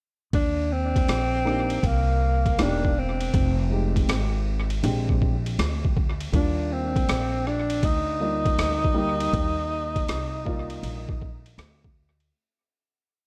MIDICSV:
0, 0, Header, 1, 5, 480
1, 0, Start_track
1, 0, Key_signature, -3, "major"
1, 0, Tempo, 750000
1, 216, Time_signature, 4, 2, 24, 8
1, 8488, End_track
2, 0, Start_track
2, 0, Title_t, "Tenor saxophone"
2, 0, Program_c, 0, 66
2, 221, Note_on_c, 0, 62, 105
2, 462, Note_on_c, 0, 60, 107
2, 472, Note_off_c, 0, 62, 0
2, 1188, Note_on_c, 0, 58, 93
2, 1198, Note_off_c, 0, 60, 0
2, 1672, Note_on_c, 0, 62, 91
2, 1682, Note_off_c, 0, 58, 0
2, 1911, Note_on_c, 0, 60, 77
2, 1921, Note_off_c, 0, 62, 0
2, 2383, Note_off_c, 0, 60, 0
2, 4064, Note_on_c, 0, 62, 87
2, 4305, Note_on_c, 0, 60, 93
2, 4314, Note_off_c, 0, 62, 0
2, 4780, Note_on_c, 0, 62, 98
2, 4790, Note_off_c, 0, 60, 0
2, 5023, Note_on_c, 0, 63, 115
2, 5033, Note_off_c, 0, 62, 0
2, 7419, Note_off_c, 0, 63, 0
2, 8488, End_track
3, 0, Start_track
3, 0, Title_t, "Upright piano"
3, 0, Program_c, 1, 0
3, 929, Note_on_c, 1, 58, 72
3, 935, Note_on_c, 1, 62, 61
3, 938, Note_on_c, 1, 63, 66
3, 944, Note_on_c, 1, 67, 74
3, 1122, Note_off_c, 1, 58, 0
3, 1125, Note_off_c, 1, 62, 0
3, 1127, Note_off_c, 1, 63, 0
3, 1130, Note_off_c, 1, 67, 0
3, 1652, Note_on_c, 1, 58, 66
3, 1657, Note_on_c, 1, 62, 64
3, 1662, Note_on_c, 1, 63, 61
3, 1664, Note_on_c, 1, 67, 80
3, 1844, Note_off_c, 1, 58, 0
3, 1846, Note_off_c, 1, 62, 0
3, 1849, Note_off_c, 1, 63, 0
3, 1850, Note_off_c, 1, 67, 0
3, 2370, Note_on_c, 1, 56, 64
3, 2373, Note_on_c, 1, 60, 60
3, 2378, Note_on_c, 1, 63, 55
3, 2382, Note_on_c, 1, 67, 69
3, 2675, Note_off_c, 1, 56, 0
3, 2677, Note_off_c, 1, 60, 0
3, 2680, Note_off_c, 1, 63, 0
3, 2681, Note_off_c, 1, 67, 0
3, 3088, Note_on_c, 1, 56, 69
3, 3095, Note_on_c, 1, 60, 63
3, 3098, Note_on_c, 1, 62, 65
3, 3103, Note_on_c, 1, 67, 73
3, 3395, Note_off_c, 1, 56, 0
3, 3398, Note_off_c, 1, 60, 0
3, 3399, Note_off_c, 1, 62, 0
3, 3402, Note_off_c, 1, 67, 0
3, 4047, Note_on_c, 1, 55, 59
3, 4051, Note_on_c, 1, 58, 54
3, 4055, Note_on_c, 1, 62, 56
3, 4059, Note_on_c, 1, 65, 69
3, 4738, Note_off_c, 1, 55, 0
3, 4740, Note_off_c, 1, 58, 0
3, 4742, Note_off_c, 1, 62, 0
3, 4744, Note_off_c, 1, 65, 0
3, 5249, Note_on_c, 1, 55, 61
3, 5254, Note_on_c, 1, 58, 54
3, 5258, Note_on_c, 1, 74, 58
3, 5262, Note_on_c, 1, 65, 60
3, 5714, Note_off_c, 1, 55, 0
3, 5721, Note_off_c, 1, 58, 0
3, 5724, Note_on_c, 1, 55, 86
3, 5730, Note_on_c, 1, 58, 77
3, 5732, Note_on_c, 1, 63, 77
3, 5737, Note_on_c, 1, 67, 86
3, 5943, Note_off_c, 1, 74, 0
3, 5945, Note_off_c, 1, 65, 0
3, 6095, Note_off_c, 1, 55, 0
3, 6098, Note_off_c, 1, 58, 0
3, 6099, Note_off_c, 1, 63, 0
3, 6102, Note_off_c, 1, 67, 0
3, 6688, Note_on_c, 1, 55, 67
3, 6692, Note_on_c, 1, 58, 68
3, 6698, Note_on_c, 1, 74, 67
3, 6700, Note_on_c, 1, 65, 88
3, 7057, Note_off_c, 1, 55, 0
3, 7059, Note_off_c, 1, 58, 0
3, 7062, Note_off_c, 1, 74, 0
3, 7063, Note_off_c, 1, 65, 0
3, 8488, End_track
4, 0, Start_track
4, 0, Title_t, "Upright bass"
4, 0, Program_c, 2, 32
4, 213, Note_on_c, 2, 39, 94
4, 670, Note_off_c, 2, 39, 0
4, 694, Note_on_c, 2, 34, 77
4, 1151, Note_off_c, 2, 34, 0
4, 1172, Note_on_c, 2, 36, 91
4, 1630, Note_off_c, 2, 36, 0
4, 1656, Note_on_c, 2, 28, 90
4, 2112, Note_off_c, 2, 28, 0
4, 2136, Note_on_c, 2, 29, 99
4, 2592, Note_off_c, 2, 29, 0
4, 2615, Note_on_c, 2, 32, 74
4, 3071, Note_off_c, 2, 32, 0
4, 3095, Note_on_c, 2, 34, 104
4, 3551, Note_off_c, 2, 34, 0
4, 3576, Note_on_c, 2, 38, 85
4, 4032, Note_off_c, 2, 38, 0
4, 4053, Note_on_c, 2, 39, 104
4, 4510, Note_off_c, 2, 39, 0
4, 4535, Note_on_c, 2, 34, 87
4, 4991, Note_off_c, 2, 34, 0
4, 5011, Note_on_c, 2, 38, 81
4, 5469, Note_off_c, 2, 38, 0
4, 5494, Note_on_c, 2, 38, 76
4, 5951, Note_off_c, 2, 38, 0
4, 5974, Note_on_c, 2, 39, 98
4, 6431, Note_off_c, 2, 39, 0
4, 6455, Note_on_c, 2, 36, 72
4, 6911, Note_off_c, 2, 36, 0
4, 6930, Note_on_c, 2, 34, 80
4, 7389, Note_off_c, 2, 34, 0
4, 7410, Note_on_c, 2, 38, 88
4, 7869, Note_off_c, 2, 38, 0
4, 8488, End_track
5, 0, Start_track
5, 0, Title_t, "Drums"
5, 214, Note_on_c, 9, 36, 108
5, 214, Note_on_c, 9, 51, 73
5, 278, Note_off_c, 9, 36, 0
5, 278, Note_off_c, 9, 51, 0
5, 614, Note_on_c, 9, 36, 82
5, 615, Note_on_c, 9, 51, 59
5, 678, Note_off_c, 9, 36, 0
5, 679, Note_off_c, 9, 51, 0
5, 694, Note_on_c, 9, 44, 52
5, 694, Note_on_c, 9, 51, 69
5, 699, Note_on_c, 9, 37, 120
5, 758, Note_off_c, 9, 44, 0
5, 758, Note_off_c, 9, 51, 0
5, 763, Note_off_c, 9, 37, 0
5, 942, Note_on_c, 9, 37, 32
5, 1006, Note_off_c, 9, 37, 0
5, 1088, Note_on_c, 9, 51, 51
5, 1152, Note_off_c, 9, 51, 0
5, 1172, Note_on_c, 9, 36, 85
5, 1174, Note_on_c, 9, 51, 62
5, 1236, Note_off_c, 9, 36, 0
5, 1238, Note_off_c, 9, 51, 0
5, 1572, Note_on_c, 9, 36, 93
5, 1574, Note_on_c, 9, 51, 52
5, 1636, Note_off_c, 9, 36, 0
5, 1638, Note_off_c, 9, 51, 0
5, 1655, Note_on_c, 9, 44, 45
5, 1655, Note_on_c, 9, 51, 67
5, 1658, Note_on_c, 9, 37, 108
5, 1719, Note_off_c, 9, 44, 0
5, 1719, Note_off_c, 9, 51, 0
5, 1722, Note_off_c, 9, 37, 0
5, 1822, Note_on_c, 9, 36, 70
5, 1886, Note_off_c, 9, 36, 0
5, 2051, Note_on_c, 9, 51, 58
5, 2115, Note_off_c, 9, 51, 0
5, 2136, Note_on_c, 9, 36, 115
5, 2137, Note_on_c, 9, 51, 72
5, 2200, Note_off_c, 9, 36, 0
5, 2201, Note_off_c, 9, 51, 0
5, 2535, Note_on_c, 9, 36, 76
5, 2538, Note_on_c, 9, 51, 63
5, 2599, Note_off_c, 9, 36, 0
5, 2602, Note_off_c, 9, 51, 0
5, 2616, Note_on_c, 9, 44, 51
5, 2616, Note_on_c, 9, 51, 75
5, 2621, Note_on_c, 9, 37, 122
5, 2680, Note_off_c, 9, 44, 0
5, 2680, Note_off_c, 9, 51, 0
5, 2685, Note_off_c, 9, 37, 0
5, 3009, Note_on_c, 9, 51, 52
5, 3073, Note_off_c, 9, 51, 0
5, 3095, Note_on_c, 9, 51, 66
5, 3159, Note_off_c, 9, 51, 0
5, 3258, Note_on_c, 9, 36, 81
5, 3322, Note_off_c, 9, 36, 0
5, 3339, Note_on_c, 9, 36, 80
5, 3403, Note_off_c, 9, 36, 0
5, 3496, Note_on_c, 9, 51, 50
5, 3560, Note_off_c, 9, 51, 0
5, 3578, Note_on_c, 9, 44, 51
5, 3578, Note_on_c, 9, 51, 68
5, 3581, Note_on_c, 9, 37, 108
5, 3642, Note_off_c, 9, 44, 0
5, 3642, Note_off_c, 9, 51, 0
5, 3645, Note_off_c, 9, 37, 0
5, 3742, Note_on_c, 9, 36, 79
5, 3806, Note_off_c, 9, 36, 0
5, 3819, Note_on_c, 9, 36, 92
5, 3883, Note_off_c, 9, 36, 0
5, 3971, Note_on_c, 9, 51, 56
5, 4035, Note_off_c, 9, 51, 0
5, 4055, Note_on_c, 9, 36, 101
5, 4056, Note_on_c, 9, 51, 71
5, 4119, Note_off_c, 9, 36, 0
5, 4120, Note_off_c, 9, 51, 0
5, 4454, Note_on_c, 9, 36, 87
5, 4456, Note_on_c, 9, 51, 55
5, 4518, Note_off_c, 9, 36, 0
5, 4520, Note_off_c, 9, 51, 0
5, 4535, Note_on_c, 9, 44, 54
5, 4535, Note_on_c, 9, 51, 66
5, 4540, Note_on_c, 9, 37, 110
5, 4599, Note_off_c, 9, 44, 0
5, 4599, Note_off_c, 9, 51, 0
5, 4604, Note_off_c, 9, 37, 0
5, 4781, Note_on_c, 9, 37, 33
5, 4845, Note_off_c, 9, 37, 0
5, 4927, Note_on_c, 9, 51, 62
5, 4991, Note_off_c, 9, 51, 0
5, 5011, Note_on_c, 9, 36, 81
5, 5011, Note_on_c, 9, 51, 69
5, 5075, Note_off_c, 9, 36, 0
5, 5075, Note_off_c, 9, 51, 0
5, 5411, Note_on_c, 9, 36, 89
5, 5412, Note_on_c, 9, 51, 54
5, 5475, Note_off_c, 9, 36, 0
5, 5476, Note_off_c, 9, 51, 0
5, 5495, Note_on_c, 9, 44, 48
5, 5495, Note_on_c, 9, 51, 70
5, 5498, Note_on_c, 9, 37, 104
5, 5559, Note_off_c, 9, 44, 0
5, 5559, Note_off_c, 9, 51, 0
5, 5562, Note_off_c, 9, 37, 0
5, 5661, Note_on_c, 9, 36, 74
5, 5725, Note_off_c, 9, 36, 0
5, 5890, Note_on_c, 9, 51, 61
5, 5954, Note_off_c, 9, 51, 0
5, 5974, Note_on_c, 9, 36, 109
5, 5975, Note_on_c, 9, 51, 70
5, 6038, Note_off_c, 9, 36, 0
5, 6039, Note_off_c, 9, 51, 0
5, 6373, Note_on_c, 9, 36, 77
5, 6374, Note_on_c, 9, 51, 59
5, 6437, Note_off_c, 9, 36, 0
5, 6438, Note_off_c, 9, 51, 0
5, 6454, Note_on_c, 9, 44, 52
5, 6454, Note_on_c, 9, 51, 71
5, 6459, Note_on_c, 9, 37, 112
5, 6518, Note_off_c, 9, 44, 0
5, 6518, Note_off_c, 9, 51, 0
5, 6523, Note_off_c, 9, 37, 0
5, 6697, Note_on_c, 9, 36, 76
5, 6761, Note_off_c, 9, 36, 0
5, 6847, Note_on_c, 9, 51, 53
5, 6911, Note_off_c, 9, 51, 0
5, 6934, Note_on_c, 9, 51, 67
5, 6998, Note_off_c, 9, 51, 0
5, 7096, Note_on_c, 9, 36, 81
5, 7160, Note_off_c, 9, 36, 0
5, 7178, Note_on_c, 9, 36, 88
5, 7242, Note_off_c, 9, 36, 0
5, 7334, Note_on_c, 9, 51, 54
5, 7398, Note_off_c, 9, 51, 0
5, 7414, Note_on_c, 9, 44, 48
5, 7414, Note_on_c, 9, 51, 69
5, 7417, Note_on_c, 9, 37, 109
5, 7478, Note_off_c, 9, 44, 0
5, 7478, Note_off_c, 9, 51, 0
5, 7481, Note_off_c, 9, 37, 0
5, 7580, Note_on_c, 9, 36, 86
5, 7644, Note_off_c, 9, 36, 0
5, 7809, Note_on_c, 9, 51, 55
5, 7873, Note_off_c, 9, 51, 0
5, 8488, End_track
0, 0, End_of_file